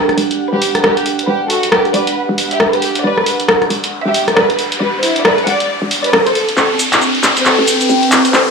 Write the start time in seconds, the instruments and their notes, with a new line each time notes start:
Already playing: analog synth pad D4 G4 F#5, riser
0.09 cross-stick, closed hi-hat
0.17 fm bass E1, open hi-hat
0.31 closed hi-hat
0.53 fm bass E1, violin section G4 B4
0.62 open hi-hat
0.75 cross-stick, closed hi-hat
0.83 fm bass E1, violin section G4 B4, cross-stick
0.97 closed hi-hat
1.06 open hi-hat
1.19 closed hi-hat
1.28 fm bass E1, violin section G4 B4
1.50 violin section F#4 A4, open hi-hat
1.63 fm bass B1, closed hi-hat
1.72 violin section G4 B4, cross-stick
1.85 closed hi-hat
1.94 fm bass E1, violin section B4 D5, open hi-hat
2.07 closed hi-hat
2.29 fm bass E1
2.38 open hi-hat
2.51 violin section G4 E5, closed hi-hat
2.60 fm bass E1, cross-stick
2.73 violin section G4 B4, closed hi-hat
2.82 open hi-hat
2.95 closed hi-hat
3.04 fm bass E1, violin section B4 D5
3.18 cross-stick
3.26 open hi-hat
3.39 fm bass B1, closed hi-hat
3.48 cross-stick
3.62 cross-stick, closed hi-hat
3.70 fm bass E1, open hi-hat
3.84 closed hi-hat
4.06 fm bass E1, violin section G4 E5
4.14 open hi-hat
4.28 cross-stick, closed hi-hat
4.36 fm bass E1, violin section B4 D5, cross-stick
4.50 closed hi-hat
4.59 open hi-hat
4.72 closed hi-hat
4.80 fm bass E1, violin section B4 D5
5.02 violin section E4 C5, open hi-hat
5.16 fm bass B1, closed hi-hat
5.25 violin section B4 D5, cross-stick
5.38 closed hi-hat
5.47 fm bass E1, violin section D5 F#5, open hi-hat
5.60 closed hi-hat
5.82 fm bass E1
5.91 open hi-hat
6.04 violin section B4 D5, closed hi-hat
6.13 fm bass A1, cross-stick
6.26 violin section A4 C5, closed hi-hat
6.35 analog synth pad C4, open hi-hat
6.49 closed hi-hat
6.57 fm bass A1, violin section A4 C5, clap, shaker
6.79 open hi-hat, shaker
6.92 fm bass E2, clap, closed hi-hat, shaker
7.02 shaker
7.14 analog synth pad B4, closed hi-hat
7.23 fm bass A1, analog synth pad G5, clap, open hi-hat, shaker
7.37 closed hi-hat, shaker
7.45 violin section A4 C5, clap, shaker
7.59 fm bass A1
7.68 open hi-hat, shaker
7.81 closed hi-hat, shaker
7.90 fm bass A1, shaker
8.03 closed hi-hat
8.12 clap, open hi-hat, shaker
8.25 closed hi-hat, shaker
8.33 fm bass A1, violin section A4 C5, clap, shaker